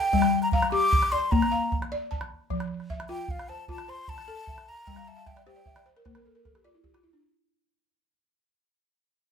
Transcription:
Already playing: E5 G5
0.13 G3, calabash thump
0.22 calabash click
0.42 A#5, calabash click
0.52 F5 A#5, calabash thump
0.62 calabash click
0.72 G4 D6
0.93 calabash thump
1.02 calabash click
1.12 D5 C6
1.31 A#3 A#5, calabash thump
1.42 calabash click
1.52 F5
1.72 calabash thump
1.82 calabash click
1.92 D5
2.11 A5, calabash thump
2.21 calabash click
2.50 F3, calabash thump
2.60 calabash click
2.80 calabash click
2.90 E5, calabash thump
3.00 calabash click
3.09 F4 G5
3.28 F5, calabash thump
3.39 calabash click
3.49 C5 A5
3.68 F4 A5, calabash thump
3.78 calabash click
3.88 C5 C6
4.08 A5, calabash thump
4.18 calabash click
4.28 A4
4.47 E5, calabash thump
4.58 calabash click
4.69 A#5
4.87 G3 G5, calabash thump
4.96 F5, calabash click
5.07 E5 A5
5.17 F5
5.26 E5 G5, calabash thump, calabash click
5.36 D5, calabash click
5.46 G4 C5 G5, calabash click
5.56 D5
5.66 E5, calabash thump
5.76 D5, calabash click
5.86 C5, calabash click
5.96 A#4, calabash click
6.05 A#3 C5, calabash thump, calabash click
6.15 A#4, calabash click
6.25 A4
6.35 A#4
6.45 A4, calabash thump, calabash click
6.55 G4, calabash click
6.64 F4 D5, calabash click
6.75 E4
6.84 G4, calabash thump
6.94 F4, calabash click
7.03 E4
7.13 D4

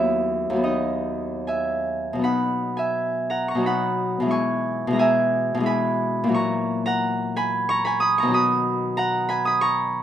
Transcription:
Already playing: D#2 F#3 B3 E4 F#4 E5 F#5
0.50 D#2 F#3
0.56 B3
0.64 D#4 D#5
1.47 E5 G#5
2.13 B2 F#3
2.19 B3 D#4
2.24 F#5 B5
2.77 E5 G#5
3.30 F#5 A#5
3.48 A#5 C#6
3.55 B2 F#3
3.60 B3 D#4
3.66 F#5 B5
4.20 B2 E3
4.26 G#3 E4
4.31 G#5 C#6
4.87 B2 E3
4.92 G#3 E4 A#5
4.99 E5 G#5
5.54 B2 E3
5.60 G#3 E4
5.66 G#5 B5
6.24 A#2 E3
6.29 F#3 F#4
6.34 A#5 C#6
6.86 F#5 A#5
7.36 G#5 B5
7.69 A#5 C#6
7.85 G#5 B5
8.00 B5 D#6
8.18 A#5 C#6
8.23 B2 D#3
8.28 F#3 F#4
8.34 B5 D#6
8.97 F#5 A#5
9.29 G#5 B5
9.45 B5 D#6
9.61 A#5 C#6

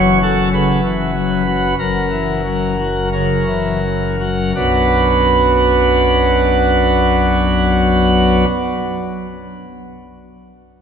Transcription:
Already playing: F#1 F#2 F#3 C#5
0.23 F#4 A4
0.53 C#3 B4
0.83 E3
1.15 F#3
1.47 F#4
1.78 F#1 F#2 A#4
2.11 E3
2.44 F#3
2.78 F#4
3.13 C#3 A#4
3.47 E3
3.83 F#3
4.20 F#4
4.55 B1 F#2 F#3 B3 D4 F#4 B4

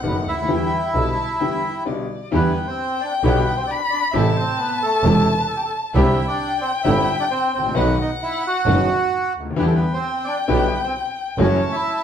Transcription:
Already playing: F#5
0.03 F#1 F#2 D#3 A3 B3 F#4
0.07 B3 B4
0.27 D2 E4 E5
0.33 C#2
0.38 D2
0.42 D#2
0.48 E2 D3 E3 G3 B3 E4 G5
0.94 B1 B2 D3 G3 B3 E4 A5
1.40 E2 D3 E3 G3 B3 E4 G5
1.85 B1 B2 D3 G3 B3 E4 D5
2.32 E2 D3 E3 G3 B3 D4 E4 G4 B4 G5
2.36 B3
2.67 C4 C5
3.01 D4 D5
3.23 B1 B2 D3 G3 B3 D4 E4 G4 B4
3.57 C5
3.61 C4
3.67 D5 B5
3.71 D4
3.90 D4 D5
4.12 A1 A2 C3 E3 A3 C4 E4 A4 E5 A5
4.16 E4
4.36 C4 C5
4.57 B3 B4
4.82 A3 A4
5.03 E1 E2 C3 E3 A3 C4 E4 A4
5.37 B4
5.47 A4
5.56 G4
5.65 A4
5.94 C2 C3 D3 G3 C4 D4 E4 G4 E5 G5
6.28 D4 D5
6.61 C4 C5
6.83 G1 G2 D3 G3 C4 D4 E4 G4 E5
7.20 D4 D5
7.31 C4 C5
7.54 A1 C4 C5
7.58 G#1
7.64 A1
7.68 A#1
7.74 B1 B2 D#3 F#3 B3 D#4 F#4 B4 F#5
8.01 D#4 D#5
8.23 E4 E5
8.47 F#4 F#5
8.66 F#1 F#2 D#3 F#3 B3 D#4 F#4
9.35 D2
9.40 C#2
9.45 D2
9.51 D#2
9.56 E2 D3 E3 G3 B3 D4 E4 G4 B4 G5
9.61 B3
9.67 A4
9.75 B3 B4
9.93 C4 C5
10.24 D4 D5
10.48 B1 B2 D3 G3 B3 D4 E4 G4 B4
10.83 C4 C5
11.38 F#1 F#2 E3 F#3 A3 C#4 E4 F#4 C#5 A5
11.42 C#4
11.72 E4 E5

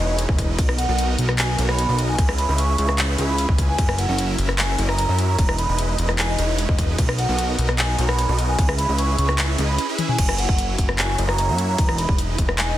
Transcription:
0.00 E1 G#3 D#4 E4 B4 C#5
0.19 closed hi-hat
0.29 E1 E4 B4, kick
0.39 kick, closed hi-hat
0.58 B1 B3 D#4 F#4 D#5, kick, closed hi-hat, crash
0.69 cross-stick
0.78 F#5, closed hi-hat
0.89 B1 B3 D#4 F#4 A#4 D#5 F#5
0.99 closed hi-hat
1.18 B1 B3 D#4 F#4 A#4 D#5, closed hi-hat
1.29 cross-stick
1.38 G#5, clap, closed hi-hat, crash
1.58 B1 B3 D#4 F#4 A#4 C#5, closed hi-hat
1.69 B5, cross-stick
1.78 B5, closed hi-hat
1.89 B1 B3 D#4 F#4 A#4 D#5
1.99 closed hi-hat
2.09 G#5
2.18 C#2 C#4 B4, kick, closed hi-hat, crash
2.29 cross-stick
2.38 B5, closed hi-hat
2.49 C#2 C#4 E4 G#4 B4 E5
2.58 C#6, closed hi-hat
2.78 C#2 C#4 E4 G#4 B4 E5 C#6, closed hi-hat
2.89 cross-stick
2.98 clap, closed hi-hat, crash
3.18 C#2 C#4 E4 G#4 B4 E5, closed hi-hat
3.29 B5
3.38 closed hi-hat
3.49 C#2 C#4 E4 G#4 G#5, kick
3.58 kick, closed hi-hat
3.69 G#5
3.78 F#1 F#3 C#4 E4 A#4 E5 G#5, kick, closed hi-hat, crash
3.89 cross-stick
3.98 F#5, closed hi-hat
4.09 F#1 F#3 C#4 E4 A#4 E5 F#5
4.18 closed hi-hat
4.38 F#1 F#3 C#4 E4 A#4 E5, closed hi-hat
4.49 cross-stick
4.59 G#5, clap, closed hi-hat, crash
4.78 F#1 F#3 C#4 E4 A#4 D#5, closed hi-hat
4.89 A#5, cross-stick
4.98 A#5, closed hi-hat
5.09 F#2 F#3 C#4 E4 A#4 E5
5.19 closed hi-hat
5.29 A#5
5.38 E1 G#3 D#4 E4 B4 D#5 A#5, kick, closed hi-hat, crash
5.49 cross-stick
5.58 B5, closed hi-hat
5.69 E1 G#3 D#4 E4 B4 D#5
5.79 closed hi-hat
5.98 E1 G#3 D#4 E4 B4 D#5, closed hi-hat
6.09 cross-stick
6.19 G#5, clap, closed hi-hat, crash
6.29 D#5
6.39 E1 G#3 D#4 E4 B4 C#5 D#5, closed hi-hat
6.59 closed hi-hat
6.69 E1 G#3 D#4 E4 B4 D#5, kick
6.79 kick, closed hi-hat
6.98 B1 B3 D#4 F#4 A#4 D#5, kick, closed hi-hat, crash
7.09 cross-stick
7.18 F#5, closed hi-hat
7.29 B1 B3 D#4 F#4 A#4 D#5 F#5
7.39 closed hi-hat
7.58 B1 B3 D#4 F#4 A#4 D#5, closed hi-hat
7.69 cross-stick
7.78 G#5, clap, closed hi-hat, crash
7.98 B1 B3 D#4 F#4 A#4 C#5, closed hi-hat
8.09 B5, cross-stick
8.18 B5, closed hi-hat
8.29 B1 B3 D#4 F#4 A#4 D#5
8.39 closed hi-hat
8.49 G#5
8.58 C#2 E4 E5, kick, closed hi-hat, crash
8.69 cross-stick
8.79 B5, closed hi-hat
8.89 C#2 C#4 E4 G#4 B4 E5
8.98 C#6, closed hi-hat
9.18 C#2 C#4 E4 G#4 B4 E5 C#6, closed hi-hat
9.29 cross-stick
9.38 clap, closed hi-hat, crash
9.58 C#2 C#4 E4 G#4 B4 D#5, closed hi-hat
9.69 B5
9.78 closed hi-hat
9.89 C#4 E4 G#4 B4 E5
9.99 closed hi-hat, high tom
10.09 G#5, mid tom
10.18 F#1 A#3 F#4 C#5, kick, closed hi-hat, crash
10.29 cross-stick
10.38 F#5, closed hi-hat
10.49 F#1 A#3 E4 F#4 C#5 E5, kick
10.59 closed hi-hat
10.78 F#1 A#3 E4 F#4, kick, closed hi-hat
10.89 cross-stick
10.98 G#5, clap, closed hi-hat
11.18 F#1 A#3 E4 F#4 C#5 D#5, closed hi-hat
11.29 A#5, cross-stick
11.38 A#5, closed hi-hat
11.49 F#2 A#3 E4 F#4 C#5 E5
11.58 closed hi-hat
11.69 A#5
11.78 E1 G#3 D#4 E4 B4 D#5, kick, closed hi-hat, crash
11.89 cross-stick
11.98 B5, closed hi-hat
12.09 E1 G#3, kick
12.18 closed hi-hat
12.38 E1, kick, closed hi-hat
12.49 cross-stick
12.58 G#5, clap, closed hi-hat
12.69 D#5

